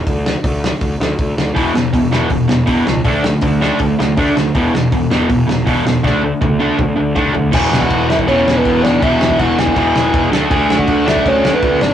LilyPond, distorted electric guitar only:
\new Staff \with { instrumentName = "Distorted electric guitar" } { \clef bass \time 4/4 \key e \mixolydian \tempo 4 = 161 r1 | <e, b, e>8 <e, b,>8 <e, b,>8 <e, b, e>8 <e, b,>8 <e, b,>8 <e, b, e>8 <e, b,>8 | <d a d'>8 <d a>8 <d a>8 <d a d'>8 <d a>8 <d a>8 <d a d'>8 <d a>8 | <e, b, e>8 <e, b,>8 <e, b,>8 <e, b, e>8 <e, b,>8 <e, b,>8 <e, b, e>8 <e, b,>8 |
<d a d'>8 <d a>8 <d a>8 <d a d'>8 <d a>8 <d a>8 <d a d'>8 <d a>8 | <e, b, e>2 <e, b, e>2 | <e, b, e>2 <e, b, e>4. <d a d'>8~ | <d a d'>4. <d a d'>2 r8 | }